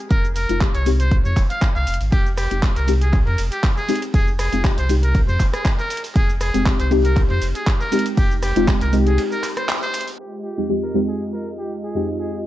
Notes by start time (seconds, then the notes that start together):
Already playing: G#3 C4 D#4 G4
0.10 F1 A#4, kick, closed hi-hat, cabasa
0.24 cabasa
0.36 A#4, open hi-hat, cabasa
0.49 F1 G#3 C4 D#4 F4, closed hi-hat, cabasa
0.61 G#3 C4 D#4 G4, kick, clap, cabasa
0.75 C2 C#5, closed hi-hat, cabasa
0.86 G#3 C4 D#4 G4, open hi-hat, cabasa
1.00 C5, closed hi-hat, cabasa
1.11 kick, closed hi-hat, cabasa
1.25 F2 C#5, cabasa
1.37 F1, kick, clap, open hi-hat, cabasa
1.50 F5, closed hi-hat, cabasa
1.62 kick, clap, closed hi-hat, cabasa
1.75 C2 F5, cabasa
1.87 F1, open hi-hat, cabasa
1.94 closed hi-hat
2.01 G#1, open hi-hat, cabasa
2.12 F1 G4, kick, closed hi-hat, ride, cabasa
2.26 cabasa
2.37 G4, cross-stick, open hi-hat, ride, cabasa
2.51 F1 G#3 C4 D#4 G4, closed hi-hat, cabasa
2.62 G#3 C4 D#4 G4, kick, snare, clap, ride, cabasa
2.76 C2 A#4, closed hi-hat, ride, cabasa
2.87 G#3 C4 D#4 G4, open hi-hat, ride, cabasa
3.01 G#4, closed hi-hat, cabasa
3.13 kick, clap, closed hi-hat, ride, cabasa
3.27 F2 A#4, ride
3.38 F1, open hi-hat, ride, cabasa
3.52 G4, closed hi-hat, cabasa
3.63 kick, snare, clap, closed hi-hat, ride, cabasa
3.77 G#4, cabasa
3.88 G#3 C4 D#4 G4, open hi-hat, ride, cabasa
3.95 closed hi-hat
4.02 closed hi-hat, ride, cabasa
4.14 F1 G#4, kick, closed hi-hat, open hi-hat, cabasa
4.28 cabasa
4.39 G#4, cross-stick, snare, open hi-hat, ride, cabasa
4.53 F1 G#3 C4 D#4 F4, closed hi-hat, cabasa
4.64 G#3 C4 D#4 G4, kick, snare, clap, ride, cabasa
4.78 C2 C5, closed hi-hat, cabasa
4.89 G#3 C4 D#4 G4, open hi-hat, ride, cabasa
5.03 A#4, closed hi-hat, cabasa
5.15 kick, closed hi-hat, ride, cabasa
5.28 F2 C5, cabasa
5.40 F1, kick, clap, open hi-hat, ride, cabasa
5.54 G#4, cross-stick, closed hi-hat, cabasa
5.65 kick, snare, clap, closed hi-hat, ride, cabasa
5.79 A#4, cabasa
5.90 open hi-hat, ride, cabasa
5.97 closed hi-hat
6.04 open hi-hat, cabasa
6.16 F1 G#4, kick, closed hi-hat, ride, cabasa
6.29 cabasa
6.41 G#4, cross-stick, open hi-hat, ride, cabasa
6.54 F1 G#3 C4 D#4 G4, closed hi-hat, cabasa
6.66 G#3 C4 D#4 G4, kick, snare, clap, ride, cabasa
6.80 C2 C5, closed hi-hat, ride, cabasa
6.91 G#3 C4 D#4 G4, open hi-hat, ride, cabasa
7.05 A#4, closed hi-hat, cabasa
7.16 kick, clap, closed hi-hat, ride, cabasa
7.30 F2 C5, ride
7.42 F1, open hi-hat, ride, cabasa
7.55 G#4, closed hi-hat, cabasa
7.67 kick, snare, clap, closed hi-hat, ride, cabasa
7.81 A#4, cabasa
7.91 G#3 C4 D#4 G4, open hi-hat, ride, cabasa
7.99 closed hi-hat
8.06 closed hi-hat, ride, cabasa
8.17 F1 G4, kick, closed hi-hat, open hi-hat, cabasa
8.31 cabasa
8.42 G4, cross-stick, snare, open hi-hat, ride, cabasa
8.56 F1 G#3 C4 D#4 F4, closed hi-hat, cabasa
8.68 C4 G4, kick, snare, clap, ride, cabasa
8.81 C2 A#4, closed hi-hat, cabasa
8.92 G#3 C4 D#4 G4, open hi-hat, cabasa
9.06 G#4, closed hi-hat, cabasa
9.18 closed hi-hat, ride, cabasa
9.32 A#4, cabasa
9.43 clap, open hi-hat, ride, cabasa
9.57 C5, cross-stick, closed hi-hat, cabasa
9.69 snare, clap, closed hi-hat, ride, cabasa
9.82 C5, cabasa
9.94 open hi-hat, ride, cabasa
10.01 closed hi-hat
10.07 open hi-hat, cabasa
10.19 G#3 F4 G4 D#5
10.44 G4
10.57 F2 G#3 C4 D#4 G4
10.69 F2 G#3 C4 D#4 G4
10.83 A#4
10.94 F2 G#3 C4 D#4 G4
11.08 G#4
11.33 A#4
11.59 G4
11.84 G#4
11.95 F2 G#3 C4 D#4 G4
12.21 G#4